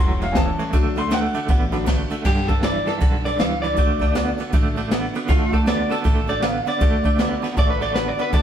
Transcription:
Already playing: upright bass E1, clean electric guitar A2, steel-string acoustic guitar G3, upright piano G3 B3 C#4 C6
0.00 clean electric guitar F#3, steel-string acoustic guitar C#4 G4 A4
0.21 clean electric guitar A2 F#3, steel-string acoustic guitar G3 C#4 G4 A4, upright piano F5, ride
0.32 steel-string acoustic guitar A2, upright piano G#5, kick, snare, ride
0.36 clean electric guitar A2 E3, steel-string acoustic guitar E3 G3 C#4 G4 A4, upright piano A5
0.59 clean electric guitar A2 E3, steel-string acoustic guitar G3 C#4 G4 A4, ride
0.73 upright bass D2, clean electric guitar D3 A3, steel-string acoustic guitar D3 A3 D4 F#4 A4, upright piano F#3 A3 D4, kick, ride
0.96 clean electric guitar D3 A3, steel-string acoustic guitar D4 F#4 A4, upright piano C6, ride
1.10 steel-string acoustic guitar D3 A3 D4 F#4 A4, clean electric guitar D3 A3, upright piano F#5, snare, ride
1.34 clean electric guitar D3 A3, steel-string acoustic guitar D4 F#4 A4, ride
1.48 upright bass A1, clean electric guitar D3 B3, steel-string acoustic guitar A3 D4 F#4 A4, kick, ride
1.72 clean electric guitar D3 B3, upright piano F#3 A3 D4, steel-string acoustic guitar D4 F#4 A4, ride
1.86 steel-string acoustic guitar D3 A3 D4 F#4 A4, clean electric guitar D3 A3, kick, snare, ride
2.10 clean electric guitar D3 A3, steel-string acoustic guitar D4 F#4 A4, ride
2.25 upright bass G1, clean electric guitar G2 D3 G4, steel-string acoustic guitar G3 D4 G4 B4, kick, crash
2.48 clean electric guitar G2 D3 A4, steel-string acoustic guitar D4 G4 B4, kick, ride
2.63 clean electric guitar G2 E3 D5, steel-string acoustic guitar G3 D4 G4 B4, snare, ride
2.86 clean electric guitar G2 E3 A4, steel-string acoustic guitar D4 G4 B4, snare, ride
3.01 upright bass B1, clean electric guitar G2 D3, steel-string acoustic guitar G3 D4 G4 B4, kick, ride
3.25 clean electric guitar G2 D3 D5, steel-string acoustic guitar D4 G4 B4, ride
3.39 upright bass C#2, clean electric guitar G2 E3 F5, steel-string acoustic guitar G3 D4 G4 B4, snare, ride
3.62 clean electric guitar G2 E3 D5, steel-string acoustic guitar D4 G4 B4, ride
3.77 upright bass D2, steel-string acoustic guitar D3 A3 D4 F#4 A4, clean electric guitar D3 A3, kick, ride
3.99 clean electric guitar D3 A3, steel-string acoustic guitar D4 F#4 A4, kick, ride
4.15 clean electric guitar D3 B3, steel-string acoustic guitar A3 D4 F#4 A4, snare, ride
4.38 clean electric guitar D3 B3, steel-string acoustic guitar D4 F#4 A4, ride
4.53 upright bass A1, steel-string acoustic guitar D3 A3 D4 F#4 A4, clean electric guitar D3 A3, kick, ride
4.76 clean electric guitar D3 A3, steel-string acoustic guitar D4 F#4 A4, ride
4.91 clean electric guitar D3 B3, steel-string acoustic guitar A3 D4 F#4 A4, snare, ride
5.14 clean electric guitar D3 B3, steel-string acoustic guitar D4 F#4 A4, ride
5.28 upright bass D2, steel-string acoustic guitar D3 A3 D4 F#4 A4, clean electric guitar D3 A3 F4, kick, ride
5.53 clean electric guitar D3 A3 A4, steel-string acoustic guitar D4 F#4 A4, kick, ride
5.66 clean electric guitar D3 B3 D5, steel-string acoustic guitar A3 D4 F#4 A4, snare, ride
5.90 clean electric guitar D3 B3 A4, steel-string acoustic guitar D4 F#4 A4, ride
6.04 upright bass A1, steel-string acoustic guitar D3 A3 D4 F#4 A4, clean electric guitar D3 A3, kick, ride
6.27 clean electric guitar D3 A3 D5, steel-string acoustic guitar D4 F#4 A4, ride
6.42 clean electric guitar D3 B3 F5, steel-string acoustic guitar F#4 A4, snare, ride
6.66 clean electric guitar D3 B3 D5, steel-string acoustic guitar D4 F#4 A4, ride
6.80 upright bass D2, steel-string acoustic guitar D3 A3 D4 F#4 A4, clean electric guitar D3 A3, kick, ride
7.04 clean electric guitar D3 A3, steel-string acoustic guitar D4 F#4 A4, kick, ride
7.18 clean electric guitar D3 B3, steel-string acoustic guitar A3 D4 F#4 A4, snare, ride
7.42 clean electric guitar D3 B3, steel-string acoustic guitar D4 F#4 A4, snare, ride
7.57 upright bass A1, steel-string acoustic guitar D3 A3 D4 F#4 A4, clean electric guitar D3 A3 D5, kick, ride
7.70 clean electric guitar B4
7.81 clean electric guitar D3 A3 D5, steel-string acoustic guitar D4 F#4 A4, ride
7.94 clean electric guitar D3 B3 B4, steel-string acoustic guitar A3 D4 F#4 A4, snare, ride
8.08 clean electric guitar D5
8.19 clean electric guitar D3 B3 B4, steel-string acoustic guitar D4 F#4 A4, ride
8.33 upright bass D2, steel-string acoustic guitar D3 A3 D4 F#4 A4, clean electric guitar D3 A3 D5, upright piano D5 F#5 A5, kick, ride

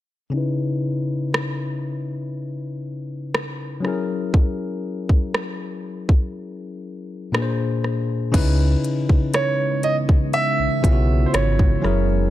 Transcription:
0.30 tine electric piano C#3 C#4 D#4
0.36 tine electric piano E4 B4
1.34 cross-stick
3.35 cross-stick
3.80 tine electric piano F#3 C#4 E4
3.85 tine electric piano G#4 A#4, cross-stick
4.34 kick
5.09 kick
5.35 cross-stick
6.09 kick
7.32 tine electric piano A#2 A#3 D4 G#4 B4, cross-stick
7.42 tine electric piano C5
7.84 cross-stick
8.32 sub bass C#2, tine electric piano C#3 C#4 D#4 E4 B4, ambient pad C#3 E3 G#3 B3, kick, closed hi-hat, crash
8.84 closed hi-hat
9.09 kick
9.34 grand piano C#5, cross-stick, closed hi-hat
9.83 grand piano D#5, closed hi-hat
10.09 kick
10.33 grand piano E5, closed hi-hat
10.59 sub bass B1
10.82 sub bass B1, tine electric piano C#3 B3 C#4 E4 F4, kick, closed hi-hat
10.92 tine electric piano F#4
11.26 grand piano C5
11.33 sub bass G#1, grand piano C#5, cross-stick, closed hi-hat
11.59 kick
11.82 sub bass F#1, ambient pad C#3 F#3 A#4, tine electric piano F#3 C#4 E4 G#4 A#4, cross-stick

